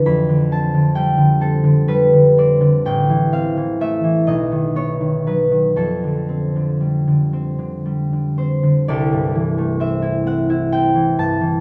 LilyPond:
<<
  \new Staff \with { instrumentName = "Harp" } { \time 6/8 \key f \lydian \tempo 4. = 42 << { <d'' f'' b''>8 a''8 g''8 a'8 b'8 d''8 | g''8 f''8 e''8 dis''8 des''8 b'8 | a'2~ a'8 c''8 | \key c \lydian d''4 e''8 fis''8 g''8 a''8 | } \\ { r2. | r2. | r2. | <g' a'>2. | } >> }
  \new Staff \with { instrumentName = "Harp" } { \clef bass \time 6/8 \key f \lydian <f, d'>16 d16 c'16 d16 g16 d16 c'16 d16 g16 d16 c'16 d16 | a,,16 e16 c'16 e16 a16 e16 b,,16 dis16 b16 dis16 fis16 dis16 | f,16 d16 c'16 d16 g16 d16 c'16 d16 g16 d16 c'16 d16 | \key c \lydian c,16 g,16 e16 a16 c'16 e'16 c'16 e'16 c'16 e16 g,16 e16 | }
>>